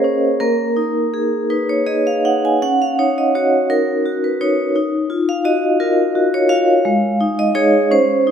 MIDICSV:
0, 0, Header, 1, 2, 480
1, 0, Start_track
1, 0, Tempo, 732601
1, 261, Time_signature, 6, 3, 24, 8
1, 2184, Tempo, 706714
1, 5566, End_track
2, 0, Start_track
2, 0, Title_t, "Vibraphone"
2, 0, Program_c, 0, 11
2, 0, Control_c, 0, 64, 127
2, 0, Note_on_c, 0, 58, 56
2, 0, Note_on_c, 0, 61, 46
2, 0, Note_on_c, 0, 68, 43
2, 0, Note_on_c, 0, 70, 74
2, 0, Note_on_c, 0, 72, 63
2, 0, Note_on_c, 0, 73, 78
2, 0, Note_on_c, 0, 75, 71
2, 28, Note_off_c, 0, 61, 0
2, 28, Note_on_c, 0, 61, 45
2, 166, Note_off_c, 0, 68, 0
2, 233, Note_off_c, 0, 58, 0
2, 264, Note_off_c, 0, 61, 0
2, 264, Note_off_c, 0, 70, 0
2, 264, Note_off_c, 0, 72, 0
2, 264, Note_on_c, 0, 70, 72
2, 265, Note_on_c, 0, 58, 61
2, 275, Control_c, 0, 64, 0
2, 278, Note_off_c, 0, 75, 0
2, 282, Note_off_c, 0, 73, 0
2, 377, Control_c, 0, 64, 127
2, 501, Note_on_c, 0, 63, 41
2, 745, Note_on_c, 0, 68, 44
2, 883, Note_off_c, 0, 63, 0
2, 980, Note_off_c, 0, 70, 0
2, 983, Note_on_c, 0, 63, 38
2, 983, Note_on_c, 0, 71, 60
2, 991, Control_c, 0, 64, 0
2, 1102, Note_off_c, 0, 71, 0
2, 1110, Note_on_c, 0, 73, 60
2, 1122, Control_c, 0, 64, 127
2, 1126, Note_off_c, 0, 68, 0
2, 1222, Note_on_c, 0, 68, 37
2, 1222, Note_on_c, 0, 75, 60
2, 1226, Note_off_c, 0, 73, 0
2, 1344, Note_off_c, 0, 75, 0
2, 1355, Note_on_c, 0, 77, 63
2, 1370, Note_off_c, 0, 63, 0
2, 1472, Note_off_c, 0, 77, 0
2, 1474, Note_on_c, 0, 63, 39
2, 1474, Note_on_c, 0, 78, 64
2, 1593, Note_off_c, 0, 78, 0
2, 1605, Note_on_c, 0, 80, 66
2, 1613, Note_off_c, 0, 68, 0
2, 1685, Note_off_c, 0, 58, 0
2, 1714, Note_off_c, 0, 63, 0
2, 1718, Note_off_c, 0, 80, 0
2, 1718, Note_on_c, 0, 61, 50
2, 1719, Note_on_c, 0, 78, 75
2, 1720, Control_c, 0, 64, 0
2, 1834, Note_off_c, 0, 78, 0
2, 1846, Control_c, 0, 64, 127
2, 1846, Note_on_c, 0, 77, 61
2, 1957, Note_off_c, 0, 77, 0
2, 1958, Note_on_c, 0, 63, 37
2, 1959, Note_on_c, 0, 73, 61
2, 2072, Note_off_c, 0, 73, 0
2, 2083, Note_on_c, 0, 75, 61
2, 2192, Note_off_c, 0, 75, 0
2, 2195, Note_on_c, 0, 66, 39
2, 2198, Note_on_c, 0, 73, 67
2, 2334, Note_off_c, 0, 63, 0
2, 2432, Note_on_c, 0, 70, 68
2, 2433, Note_off_c, 0, 73, 0
2, 2433, Note_on_c, 0, 63, 32
2, 2438, Control_c, 0, 64, 0
2, 2538, Control_c, 0, 64, 127
2, 2575, Note_off_c, 0, 66, 0
2, 2676, Note_on_c, 0, 66, 39
2, 2790, Note_off_c, 0, 70, 0
2, 2800, Note_on_c, 0, 71, 44
2, 2814, Note_off_c, 0, 63, 0
2, 2913, Note_off_c, 0, 71, 0
2, 2915, Note_on_c, 0, 63, 42
2, 2915, Note_on_c, 0, 73, 59
2, 3053, Note_off_c, 0, 66, 0
2, 3120, Note_off_c, 0, 61, 0
2, 3142, Note_off_c, 0, 63, 0
2, 3147, Note_off_c, 0, 73, 0
2, 3150, Note_on_c, 0, 63, 53
2, 3155, Control_c, 0, 64, 0
2, 3261, Control_c, 0, 64, 127
2, 3383, Note_on_c, 0, 65, 43
2, 3512, Note_on_c, 0, 77, 69
2, 3620, Note_on_c, 0, 66, 47
2, 3623, Note_off_c, 0, 77, 0
2, 3623, Note_on_c, 0, 75, 76
2, 3761, Note_off_c, 0, 65, 0
2, 3858, Note_off_c, 0, 75, 0
2, 3860, Note_on_c, 0, 65, 42
2, 3860, Note_on_c, 0, 70, 62
2, 3999, Note_off_c, 0, 66, 0
2, 4099, Note_on_c, 0, 66, 46
2, 4215, Note_off_c, 0, 70, 0
2, 4227, Note_on_c, 0, 73, 74
2, 4238, Note_off_c, 0, 65, 0
2, 4329, Note_on_c, 0, 65, 47
2, 4330, Note_on_c, 0, 77, 89
2, 4339, Note_off_c, 0, 73, 0
2, 4478, Note_off_c, 0, 66, 0
2, 4548, Note_off_c, 0, 63, 0
2, 4570, Note_off_c, 0, 65, 0
2, 4573, Note_on_c, 0, 56, 64
2, 4583, Control_c, 0, 64, 0
2, 4711, Control_c, 0, 64, 127
2, 4813, Note_on_c, 0, 63, 50
2, 4932, Note_off_c, 0, 77, 0
2, 4939, Note_on_c, 0, 75, 84
2, 5039, Note_off_c, 0, 63, 0
2, 5047, Note_on_c, 0, 63, 53
2, 5048, Note_on_c, 0, 73, 94
2, 5049, Note_on_c, 0, 68, 58
2, 5058, Note_off_c, 0, 75, 0
2, 5270, Note_off_c, 0, 63, 0
2, 5271, Note_off_c, 0, 68, 0
2, 5278, Note_off_c, 0, 56, 0
2, 5294, Note_on_c, 0, 61, 55
2, 5295, Note_off_c, 0, 73, 0
2, 5297, Note_on_c, 0, 72, 81
2, 5311, Control_c, 0, 64, 0
2, 5422, Control_c, 0, 64, 127
2, 5537, Note_on_c, 0, 63, 45
2, 5566, Note_off_c, 0, 61, 0
2, 5566, Note_off_c, 0, 63, 0
2, 5566, Note_off_c, 0, 72, 0
2, 5566, End_track
0, 0, End_of_file